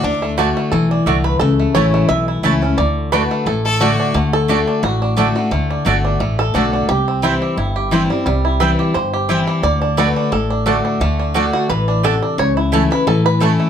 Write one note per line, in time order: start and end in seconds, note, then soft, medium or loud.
0.00 0.51 D2 medium
0.00 0.22 A3 medium
0.00 0.53 D4 medium
0.00 0.30 D4 medium
0.04 0.36 D3 loud
0.22 0.56 A3 medium
0.38 0.71 D3 medium
0.38 0.48 A3 medium
0.38 0.71 A3 medium
0.38 0.72 D4 medium
0.38 0.73 F#4 medium
0.38 0.48 F#4 medium
0.38 0.72 F#4 medium
0.38 0.48 D5 loud
0.38 0.48 A5 loud
0.57 1.07 A3 medium
0.72 1.01 B1 medium
0.72 1.05 E3 medium
0.72 0.91 A4 medium
0.91 1.24 D4 medium
1.06 1.35 C2 medium
1.06 1.39 D3 medium
1.06 1.16 A3 medium
1.06 1.59 A3 medium
1.06 1.16 F#4 medium
1.06 1.17 D5 medium
1.06 1.17 A5 medium
1.24 1.39 B4 medium
1.40 1.64 C#2 medium
1.40 2.06 C#3 loud
1.40 1.74 A4 loud
1.60 1.93 A3 medium
1.75 2.04 A1 medium
1.75 2.08 E3 medium
1.75 1.85 A3 loud
1.75 2.08 A3 medium
1.75 2.08 C#4 medium
1.75 1.85 E4 medium
1.75 2.09 E4 loud
1.75 2.08 C#5 loud
1.75 1.85 C#5 medium
1.75 1.85 A5 loud
1.94 2.43 A3 medium
2.09 2.38 B1 medium
2.09 2.28 E5 loud
2.28 2.75 E4 medium
2.43 2.72 C#2 medium
2.43 2.61 E3 loud
2.43 2.53 A3 medium
2.43 3.15 A3 medium
2.43 2.62 A3 medium
2.43 2.62 C#4 medium
2.43 2.53 E4 medium
2.43 2.61 E4 loud
2.43 2.54 C#5 loud
2.43 2.54 A5 loud
2.62 2.78 C#4 medium
2.62 2.78 C#4 soft
2.62 2.77 E4 medium
2.78 3.26 D2 medium
2.78 3.11 D3 loud
2.78 3.12 D5 loud
3.12 3.45 D3 medium
3.12 3.22 A3 loud
3.12 3.45 A3 loud
3.12 3.46 D4 loud
3.12 3.22 F#4 loud
3.12 3.46 F#4 loud
3.12 3.47 B4 medium
3.12 3.22 D5 loud
3.12 3.22 A5 loud
3.31 3.64 A3 medium
3.46 3.94 A1 medium
3.46 4.12 A2 medium
3.46 3.64 A4 medium
3.65 4.12 A3 medium
3.65 3.82 A4 loud
3.80 4.13 D3 loud
3.80 3.90 A3 medium
3.80 4.13 A3 medium
3.80 3.98 D4 medium
3.80 4.14 D4 loud
3.80 4.15 F#4 loud
3.80 3.90 F#4 medium
3.80 4.14 F#4 loud
3.80 3.91 D5 loud
3.80 3.91 A5 loud
4.00 4.15 D4 medium
4.14 4.62 D2 medium
4.14 4.47 D3 medium
4.14 4.49 A3 medium
4.33 4.83 A4 loud
4.48 4.81 D3 medium
4.48 4.59 A3 medium
4.48 4.82 A3 medium
4.48 4.98 A3 medium
4.48 4.82 D4 loud
4.48 4.59 F#4 loud
4.48 4.83 F#4 medium
4.48 4.59 D5 loud
4.48 4.59 A5 loud
4.67 5.01 D4 medium
4.83 5.31 A1 medium
4.83 5.49 A2 medium
4.83 5.17 F#4 loud
5.02 5.16 D4 medium
5.16 5.35 D3 medium
5.16 5.27 A3 loud
5.16 5.35 A3 loud
5.16 5.67 D4 medium
5.16 5.36 D4 medium
5.16 5.27 F#4 medium
5.16 5.34 F#4 loud
5.16 5.28 D5 loud
5.16 5.28 A5 medium
5.35 5.51 A3 medium
5.35 5.52 D4 soft
5.35 5.51 F#4 medium
5.51 5.75 D2 medium
5.51 5.83 D3 loud
5.51 5.85 A3 medium
5.70 6.03 D4 medium
5.85 6.15 G1 loud
5.85 6.18 D3 medium
5.85 5.96 A3 medium
5.85 6.19 A3 loud
5.85 6.19 A3 medium
5.85 6.19 D4 medium
5.85 5.96 F#4 medium
5.85 6.19 F#4 medium
5.85 5.96 D5 loud
5.85 5.96 A5 loud
6.05 6.52 D4 medium
6.20 6.50 A1 medium
6.20 6.86 A2 medium
6.20 6.70 A3 medium
6.39 6.86 A4 loud
6.54 6.84 B1 medium
6.54 6.87 D3 medium
6.54 6.64 A3 medium
6.54 6.87 A3 medium
6.54 6.72 D4 medium
6.54 6.88 D4 medium
6.54 6.65 F#4 medium
6.54 6.88 F#4 loud
6.54 6.65 D5 medium
6.54 6.65 A5 loud
6.73 6.88 D4 medium
6.89 7.37 C2 medium
6.89 7.54 C3 loud
6.89 7.23 G4 loud
7.08 8.48 C4 medium
7.22 7.56 E3 medium
7.22 7.56 G3 medium
7.22 7.33 C4 loud
7.22 7.56 C4 medium
7.22 7.57 E4 medium
7.22 7.33 E4 loud
7.22 7.57 E4 loud
7.22 7.33 C5 loud
7.22 7.34 G5 loud
7.42 7.75 G4 medium
7.57 8.05 G1 medium
7.57 8.23 G2 medium
7.57 7.91 E4 medium
7.76 8.23 G4 medium
7.91 8.09 E3 medium
7.91 8.10 G3 loud
7.91 8.01 C4 medium
7.91 8.10 C4 loud
7.91 8.41 E4 medium
7.91 8.02 E4 medium
7.91 8.09 E4 loud
7.91 8.02 C5 loud
7.91 8.02 G5 loud
8.10 8.25 G3 medium
8.10 8.27 C4 medium
8.10 8.25 E4 medium
8.26 8.74 C2 medium
8.26 8.92 C3 loud
8.26 8.75 G3 medium
8.45 8.92 E4 medium
8.60 8.93 E3 medium
8.60 8.94 G3 medium
8.60 8.70 C4 loud
8.60 8.94 C4 medium
8.60 8.70 E4 medium
8.60 8.94 E4 loud
8.60 8.94 B4 medium
8.60 8.71 C5 medium
8.60 8.71 G5 loud
8.79 9.12 G4 medium
8.94 9.43 G1 medium
8.94 9.60 G2 medium
8.94 9.65 C5 medium
9.14 9.46 G4 medium
9.29 9.62 E3 loud
9.29 9.62 G3 loud
9.29 9.39 C4 medium
9.29 9.63 C4 loud
9.29 9.63 E4 medium
9.29 9.39 E4 medium
9.29 9.63 E4 loud
9.29 9.39 C5 medium
9.29 9.39 G5 loud
9.47 9.63 G4 medium
9.63 10.11 D2 medium
9.63 9.96 D3 loud
9.63 9.81 D5 loud
9.82 10.16 D4 medium
9.97 10.30 D3 medium
9.97 10.07 A3 medium
9.97 10.31 A3 loud
9.97 10.31 D4 medium
9.97 10.08 F#4 medium
9.97 10.31 F#4 medium
9.97 10.32 B4 loud
9.97 10.08 D5 loud
9.97 10.08 A5 loud
10.16 10.49 D4 medium
10.32 10.80 A1 medium
10.32 10.98 A2 medium
10.32 11.16 A4 medium
10.50 10.65 D4 medium
10.66 10.99 D3 medium
10.66 10.76 A3 medium
10.66 10.99 A3 loud
10.66 10.84 D4 medium
10.66 11.00 D4 medium
10.66 10.76 F#4 medium
10.66 11.00 F#4 medium
10.66 10.76 D5 medium
10.66 10.77 A5 loud
10.85 11.18 D4 medium
11.00 11.48 D2 medium
11.00 11.33 D3 loud
11.00 11.73 A3 medium
11.19 11.34 D4 medium
11.34 11.68 D3 medium
11.34 11.44 A3 loud
11.34 11.68 A3 medium
11.34 11.84 D4 medium
11.34 11.68 D4 medium
11.34 11.45 F#4 loud
11.34 11.69 F#4 loud
11.34 11.45 D5 loud
11.34 11.45 A5 loud
11.53 11.68 F#4 medium
11.69 12.17 A1 medium
11.69 12.02 E3 medium
11.69 12.01 B4 loud
11.88 12.21 D4 medium
12.03 12.37 C3 loud
12.03 12.13 A3 medium
12.03 12.14 F#4 medium
12.03 12.36 A4 loud
12.03 12.14 D5 medium
12.03 12.14 A5 loud
12.22 12.38 D4 medium
12.38 12.86 C#2 medium
12.38 13.04 C#3 medium
12.38 12.56 C#5 loud
12.57 12.92 E4 medium
12.72 12.90 E3 medium
12.72 12.82 A3 medium
12.72 13.29 A3 medium
12.72 12.90 A3 medium
12.72 12.91 C#4 loud
12.72 12.82 E4 loud
12.72 12.89 E4 medium
12.72 12.83 C#5 loud
12.72 12.83 A5 loud
12.91 13.07 C#4 medium
12.91 13.06 E4 medium
12.91 13.07 B4 loud
13.07 13.55 A2 medium
13.07 13.39 E3 loud
13.07 13.25 A4 loud
13.26 13.42 B4 loud
13.40 13.70 E3 medium
13.40 13.51 A3 medium
13.40 13.70 A3 loud
13.40 13.70 C#4 medium
13.40 13.51 E4 medium
13.40 13.70 E4 loud
13.40 13.70 A4 medium
13.40 13.51 C#5 medium
13.40 13.51 A5 loud
13.60 13.70 A3 medium